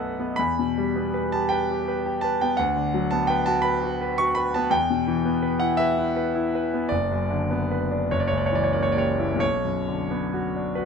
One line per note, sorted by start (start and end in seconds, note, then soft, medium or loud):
0.00 0.35 B1 medium
0.00 0.40 F#2 soft
0.00 0.41 A3 soft
0.00 0.19 B3 soft
0.00 0.41 A4 soft
0.00 0.41 B4 soft
0.00 0.40 E5 medium
0.00 0.38 F#5 medium
0.19 0.39 B3 soft
0.36 2.55 E2 medium
0.36 1.32 B5 medium
0.59 0.89 B2 soft
0.78 1.07 G3 soft
0.96 1.25 B3 soft
1.14 1.43 B4 soft
1.32 1.62 G4 soft
1.32 1.51 A5 medium
1.49 1.80 B4 soft
1.49 2.22 G5 medium
1.71 1.99 G4 soft
1.88 2.16 B4 soft
2.06 2.34 G4 medium
2.21 2.52 B4 soft
2.21 2.40 A5 medium
2.41 2.59 B3 soft
2.41 2.58 G5 medium
2.57 4.69 D2 medium
2.57 3.10 F#5 medium
2.76 3.04 D3 soft
2.94 3.22 F#3 medium
3.11 3.40 B3 soft
3.11 3.28 A5 medium
3.27 3.58 B4 soft
3.27 3.46 G5 medium
3.46 3.76 F#4 medium
3.46 3.64 A5 medium
3.62 3.94 B4 soft
3.62 4.18 B5 medium
3.83 4.12 F#4 soft
4.01 4.30 B4 soft
4.18 4.48 F#4 medium
4.18 4.37 C#6 loud
4.35 4.66 B4 soft
4.35 4.54 B5 medium
4.54 4.73 B3 soft
4.54 4.72 A5 medium
4.70 6.86 E2 medium
4.70 5.60 G5 medium
4.90 5.18 B2 soft
5.08 5.35 E3 medium
5.25 5.54 B3 soft
5.42 5.71 B4 soft
5.60 5.90 E4 soft
5.60 5.78 F#5 medium
5.77 6.09 B4 soft
5.77 6.90 E5 medium
5.98 6.27 E4 soft
6.16 6.46 B4 medium
6.35 6.65 E4 soft
6.55 6.84 B4 medium
6.74 6.92 B3 soft
6.89 8.07 F#1 medium
6.89 8.10 D5 medium
7.11 7.42 F#2 soft
7.30 7.62 D3 soft
7.51 7.83 B3 soft
7.71 8.03 B4 soft
7.91 8.11 D4 soft
8.11 9.38 F#1 medium
8.11 8.20 C#5 medium
8.20 8.28 D5 medium
8.27 8.65 C#2 soft
8.27 8.37 C#5 medium
8.38 8.46 D5 medium
8.46 8.55 C#5 medium
8.52 8.87 E3 soft
8.52 8.64 D5 medium
8.64 8.73 C#5 medium
8.73 9.10 A#3 soft
8.73 8.82 D5 medium
8.83 8.91 C#5 medium
8.92 9.01 D5 medium
8.96 9.33 G4 soft
8.96 9.39 C#5 medium
9.19 9.42 E4 soft
9.36 10.85 B1 soft
9.40 10.77 C#5 medium
9.65 10.01 F#2 soft
9.88 10.24 D3 soft
10.11 10.46 B3 soft
10.34 10.69 F#4 soft
10.56 10.85 D4 soft
10.75 10.85 F#4 soft
10.75 10.85 B4 medium